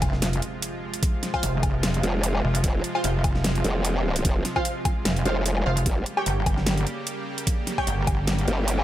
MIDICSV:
0, 0, Header, 1, 7, 480
1, 0, Start_track
1, 0, Key_signature, -4, "minor"
1, 0, Tempo, 402685
1, 1224, Time_signature, 4, 2, 24, 8
1, 10535, End_track
2, 0, Start_track
2, 0, Title_t, "Synth stab"
2, 0, Program_c, 0, 62
2, 1595, Note_on_c, 0, 65, 87
2, 1595, Note_on_c, 0, 72, 80
2, 1595, Note_on_c, 0, 77, 97
2, 1786, Note_off_c, 0, 65, 0
2, 1787, Note_off_c, 0, 72, 0
2, 1787, Note_off_c, 0, 77, 0
2, 3515, Note_on_c, 0, 65, 86
2, 3515, Note_on_c, 0, 72, 80
2, 3515, Note_on_c, 0, 77, 94
2, 3707, Note_off_c, 0, 65, 0
2, 3707, Note_off_c, 0, 72, 0
2, 3707, Note_off_c, 0, 77, 0
2, 5436, Note_on_c, 0, 65, 87
2, 5436, Note_on_c, 0, 72, 78
2, 5436, Note_on_c, 0, 77, 96
2, 5627, Note_off_c, 0, 65, 0
2, 5627, Note_off_c, 0, 72, 0
2, 5627, Note_off_c, 0, 77, 0
2, 6263, Note_on_c, 0, 65, 81
2, 6263, Note_on_c, 0, 72, 73
2, 6263, Note_on_c, 0, 77, 87
2, 6397, Note_off_c, 0, 65, 0
2, 6397, Note_off_c, 0, 72, 0
2, 6397, Note_off_c, 0, 77, 0
2, 6744, Note_on_c, 0, 65, 78
2, 6744, Note_on_c, 0, 72, 72
2, 6744, Note_on_c, 0, 77, 88
2, 6878, Note_off_c, 0, 65, 0
2, 6878, Note_off_c, 0, 72, 0
2, 6878, Note_off_c, 0, 77, 0
2, 7355, Note_on_c, 0, 67, 87
2, 7355, Note_on_c, 0, 79, 93
2, 7356, Note_on_c, 0, 73, 81
2, 7547, Note_off_c, 0, 67, 0
2, 7547, Note_off_c, 0, 73, 0
2, 7547, Note_off_c, 0, 79, 0
2, 9275, Note_on_c, 0, 73, 79
2, 9276, Note_on_c, 0, 67, 87
2, 9276, Note_on_c, 0, 79, 97
2, 9467, Note_off_c, 0, 67, 0
2, 9467, Note_off_c, 0, 73, 0
2, 9467, Note_off_c, 0, 79, 0
2, 10535, End_track
3, 0, Start_track
3, 0, Title_t, "Supersaw synth"
3, 0, Program_c, 1, 81
3, 0, Note_on_c, 1, 48, 82
3, 0, Note_on_c, 1, 53, 73
3, 0, Note_on_c, 1, 56, 75
3, 0, Note_on_c, 1, 65, 92
3, 6936, Note_off_c, 1, 65, 0
3, 6937, Note_off_c, 1, 48, 0
3, 6937, Note_off_c, 1, 53, 0
3, 6937, Note_off_c, 1, 56, 0
3, 6986, Note_on_c, 1, 49, 80
3, 6986, Note_on_c, 1, 55, 73
3, 6986, Note_on_c, 1, 58, 76
3, 6986, Note_on_c, 1, 67, 90
3, 10535, Note_off_c, 1, 49, 0
3, 10535, Note_off_c, 1, 55, 0
3, 10535, Note_off_c, 1, 58, 0
3, 10535, Note_off_c, 1, 67, 0
3, 10535, End_track
4, 0, Start_track
4, 0, Title_t, "Wobble bass"
4, 0, Program_c, 2, 39
4, 0, Note_on_c, 2, 29, 96
4, 486, Note_off_c, 2, 29, 0
4, 1703, Note_on_c, 2, 29, 99
4, 2406, Note_off_c, 2, 29, 0
4, 2904, Note_on_c, 2, 29, 102
4, 3127, Note_off_c, 2, 29, 0
4, 3622, Note_on_c, 2, 29, 99
4, 4326, Note_off_c, 2, 29, 0
4, 6023, Note_on_c, 2, 29, 102
4, 6246, Note_off_c, 2, 29, 0
4, 6743, Note_on_c, 2, 29, 97
4, 6966, Note_off_c, 2, 29, 0
4, 7464, Note_on_c, 2, 31, 100
4, 8167, Note_off_c, 2, 31, 0
4, 9383, Note_on_c, 2, 31, 97
4, 10086, Note_off_c, 2, 31, 0
4, 10535, End_track
5, 0, Start_track
5, 0, Title_t, "Wobble bass"
5, 0, Program_c, 3, 39
5, 2424, Note_on_c, 3, 29, 98
5, 2887, Note_off_c, 3, 29, 0
5, 3144, Note_on_c, 3, 29, 100
5, 3366, Note_off_c, 3, 29, 0
5, 4344, Note_on_c, 3, 29, 96
5, 5046, Note_off_c, 3, 29, 0
5, 5064, Note_on_c, 3, 29, 97
5, 5287, Note_off_c, 3, 29, 0
5, 6263, Note_on_c, 3, 29, 96
5, 6726, Note_off_c, 3, 29, 0
5, 6984, Note_on_c, 3, 31, 100
5, 7206, Note_off_c, 3, 31, 0
5, 10104, Note_on_c, 3, 31, 99
5, 10535, Note_off_c, 3, 31, 0
5, 10535, End_track
6, 0, Start_track
6, 0, Title_t, "Impact"
6, 0, Program_c, 4, 103
6, 0, Note_on_c, 4, 60, 78
6, 1224, Note_off_c, 4, 60, 0
6, 10535, End_track
7, 0, Start_track
7, 0, Title_t, "Drums"
7, 23, Note_on_c, 9, 36, 107
7, 23, Note_on_c, 9, 42, 57
7, 23, Note_on_c, 9, 77, 60
7, 142, Note_off_c, 9, 36, 0
7, 142, Note_off_c, 9, 42, 0
7, 142, Note_off_c, 9, 77, 0
7, 155, Note_on_c, 9, 38, 36
7, 264, Note_off_c, 9, 38, 0
7, 264, Note_on_c, 9, 38, 119
7, 264, Note_on_c, 9, 42, 85
7, 383, Note_off_c, 9, 38, 0
7, 383, Note_off_c, 9, 42, 0
7, 396, Note_on_c, 9, 42, 39
7, 504, Note_off_c, 9, 42, 0
7, 504, Note_on_c, 9, 42, 54
7, 623, Note_off_c, 9, 42, 0
7, 744, Note_on_c, 9, 42, 84
7, 863, Note_off_c, 9, 42, 0
7, 1115, Note_on_c, 9, 42, 65
7, 1223, Note_off_c, 9, 42, 0
7, 1223, Note_on_c, 9, 36, 125
7, 1223, Note_on_c, 9, 42, 84
7, 1343, Note_off_c, 9, 36, 0
7, 1343, Note_off_c, 9, 42, 0
7, 1464, Note_on_c, 9, 38, 39
7, 1464, Note_on_c, 9, 42, 57
7, 1583, Note_off_c, 9, 38, 0
7, 1583, Note_off_c, 9, 42, 0
7, 1595, Note_on_c, 9, 36, 66
7, 1596, Note_on_c, 9, 77, 79
7, 1704, Note_on_c, 9, 42, 86
7, 1714, Note_off_c, 9, 36, 0
7, 1715, Note_off_c, 9, 77, 0
7, 1823, Note_off_c, 9, 42, 0
7, 1943, Note_on_c, 9, 42, 58
7, 1943, Note_on_c, 9, 77, 59
7, 1944, Note_on_c, 9, 36, 113
7, 2063, Note_off_c, 9, 36, 0
7, 2063, Note_off_c, 9, 42, 0
7, 2063, Note_off_c, 9, 77, 0
7, 2184, Note_on_c, 9, 38, 123
7, 2184, Note_on_c, 9, 42, 84
7, 2303, Note_off_c, 9, 38, 0
7, 2303, Note_off_c, 9, 42, 0
7, 2315, Note_on_c, 9, 42, 40
7, 2425, Note_off_c, 9, 42, 0
7, 2425, Note_on_c, 9, 42, 55
7, 2544, Note_off_c, 9, 42, 0
7, 2664, Note_on_c, 9, 42, 84
7, 2783, Note_off_c, 9, 42, 0
7, 2797, Note_on_c, 9, 77, 52
7, 2916, Note_off_c, 9, 77, 0
7, 3037, Note_on_c, 9, 42, 67
7, 3144, Note_on_c, 9, 36, 124
7, 3145, Note_off_c, 9, 42, 0
7, 3145, Note_on_c, 9, 42, 83
7, 3263, Note_off_c, 9, 36, 0
7, 3264, Note_off_c, 9, 42, 0
7, 3386, Note_on_c, 9, 42, 57
7, 3505, Note_off_c, 9, 42, 0
7, 3517, Note_on_c, 9, 77, 77
7, 3624, Note_on_c, 9, 42, 82
7, 3636, Note_off_c, 9, 77, 0
7, 3743, Note_off_c, 9, 42, 0
7, 3864, Note_on_c, 9, 36, 119
7, 3864, Note_on_c, 9, 42, 54
7, 3864, Note_on_c, 9, 77, 59
7, 3983, Note_off_c, 9, 36, 0
7, 3983, Note_off_c, 9, 42, 0
7, 3983, Note_off_c, 9, 77, 0
7, 3996, Note_on_c, 9, 38, 39
7, 4105, Note_off_c, 9, 38, 0
7, 4105, Note_on_c, 9, 38, 127
7, 4105, Note_on_c, 9, 42, 83
7, 4224, Note_off_c, 9, 38, 0
7, 4224, Note_off_c, 9, 42, 0
7, 4237, Note_on_c, 9, 42, 38
7, 4344, Note_off_c, 9, 42, 0
7, 4344, Note_on_c, 9, 42, 53
7, 4463, Note_off_c, 9, 42, 0
7, 4584, Note_on_c, 9, 42, 82
7, 4704, Note_off_c, 9, 42, 0
7, 4956, Note_on_c, 9, 42, 64
7, 5064, Note_on_c, 9, 36, 125
7, 5065, Note_off_c, 9, 42, 0
7, 5065, Note_on_c, 9, 42, 79
7, 5183, Note_off_c, 9, 36, 0
7, 5184, Note_off_c, 9, 42, 0
7, 5304, Note_on_c, 9, 38, 41
7, 5304, Note_on_c, 9, 42, 55
7, 5423, Note_off_c, 9, 38, 0
7, 5423, Note_off_c, 9, 42, 0
7, 5435, Note_on_c, 9, 36, 66
7, 5436, Note_on_c, 9, 77, 79
7, 5544, Note_on_c, 9, 42, 81
7, 5554, Note_off_c, 9, 36, 0
7, 5555, Note_off_c, 9, 77, 0
7, 5663, Note_off_c, 9, 42, 0
7, 5784, Note_on_c, 9, 36, 111
7, 5784, Note_on_c, 9, 42, 52
7, 5784, Note_on_c, 9, 77, 62
7, 5903, Note_off_c, 9, 36, 0
7, 5903, Note_off_c, 9, 42, 0
7, 5903, Note_off_c, 9, 77, 0
7, 6024, Note_on_c, 9, 38, 126
7, 6024, Note_on_c, 9, 42, 82
7, 6143, Note_off_c, 9, 38, 0
7, 6143, Note_off_c, 9, 42, 0
7, 6156, Note_on_c, 9, 42, 37
7, 6264, Note_off_c, 9, 42, 0
7, 6264, Note_on_c, 9, 42, 53
7, 6384, Note_off_c, 9, 42, 0
7, 6504, Note_on_c, 9, 42, 77
7, 6623, Note_off_c, 9, 42, 0
7, 6636, Note_on_c, 9, 77, 53
7, 6756, Note_off_c, 9, 77, 0
7, 6877, Note_on_c, 9, 42, 61
7, 6984, Note_on_c, 9, 36, 120
7, 6985, Note_off_c, 9, 42, 0
7, 6985, Note_on_c, 9, 42, 77
7, 7103, Note_off_c, 9, 36, 0
7, 7104, Note_off_c, 9, 42, 0
7, 7225, Note_on_c, 9, 42, 52
7, 7344, Note_off_c, 9, 42, 0
7, 7357, Note_on_c, 9, 77, 83
7, 7465, Note_on_c, 9, 42, 78
7, 7476, Note_off_c, 9, 77, 0
7, 7584, Note_off_c, 9, 42, 0
7, 7704, Note_on_c, 9, 36, 113
7, 7705, Note_on_c, 9, 42, 51
7, 7705, Note_on_c, 9, 77, 61
7, 7823, Note_off_c, 9, 36, 0
7, 7824, Note_off_c, 9, 42, 0
7, 7824, Note_off_c, 9, 77, 0
7, 7837, Note_on_c, 9, 38, 38
7, 7944, Note_off_c, 9, 38, 0
7, 7944, Note_on_c, 9, 38, 120
7, 7944, Note_on_c, 9, 42, 77
7, 8064, Note_off_c, 9, 38, 0
7, 8064, Note_off_c, 9, 42, 0
7, 8076, Note_on_c, 9, 42, 35
7, 8185, Note_off_c, 9, 42, 0
7, 8185, Note_on_c, 9, 42, 51
7, 8304, Note_off_c, 9, 42, 0
7, 8424, Note_on_c, 9, 42, 77
7, 8543, Note_off_c, 9, 42, 0
7, 8796, Note_on_c, 9, 42, 61
7, 8904, Note_off_c, 9, 42, 0
7, 8904, Note_on_c, 9, 36, 117
7, 8904, Note_on_c, 9, 42, 78
7, 9023, Note_off_c, 9, 36, 0
7, 9023, Note_off_c, 9, 42, 0
7, 9144, Note_on_c, 9, 38, 37
7, 9144, Note_on_c, 9, 42, 52
7, 9263, Note_off_c, 9, 38, 0
7, 9263, Note_off_c, 9, 42, 0
7, 9276, Note_on_c, 9, 36, 61
7, 9276, Note_on_c, 9, 77, 84
7, 9383, Note_on_c, 9, 42, 79
7, 9395, Note_off_c, 9, 36, 0
7, 9395, Note_off_c, 9, 77, 0
7, 9502, Note_off_c, 9, 42, 0
7, 9623, Note_on_c, 9, 42, 51
7, 9623, Note_on_c, 9, 77, 65
7, 9624, Note_on_c, 9, 36, 108
7, 9742, Note_off_c, 9, 42, 0
7, 9742, Note_off_c, 9, 77, 0
7, 9743, Note_off_c, 9, 36, 0
7, 9863, Note_on_c, 9, 38, 117
7, 9863, Note_on_c, 9, 42, 78
7, 9982, Note_off_c, 9, 38, 0
7, 9982, Note_off_c, 9, 42, 0
7, 9995, Note_on_c, 9, 42, 36
7, 10104, Note_off_c, 9, 42, 0
7, 10104, Note_on_c, 9, 42, 49
7, 10223, Note_off_c, 9, 42, 0
7, 10344, Note_on_c, 9, 42, 77
7, 10463, Note_off_c, 9, 42, 0
7, 10476, Note_on_c, 9, 77, 58
7, 10535, Note_off_c, 9, 77, 0
7, 10535, End_track
0, 0, End_of_file